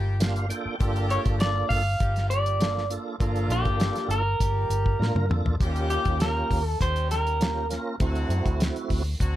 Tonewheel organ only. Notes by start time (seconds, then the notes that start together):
0.20 A#3 D4 F4 G4 F5
0.49 A#3 D4 F4 A4 G5
0.80 A#3 D4 F4 A4
2.59 A#3 D4 F4 A4
2.90 A#3 D4 F4 A4
3.20 A#3 D4 F4 A4
4.99 A#3 D4 F4 A#4
5.29 A#3 D4 F4 A4
5.60 A#3 C#4 F4 G4
7.40 A#3 C#4 F4 G4
7.69 A#3 C#4 F4 A#4
8.00 A3 C4 E4 F#4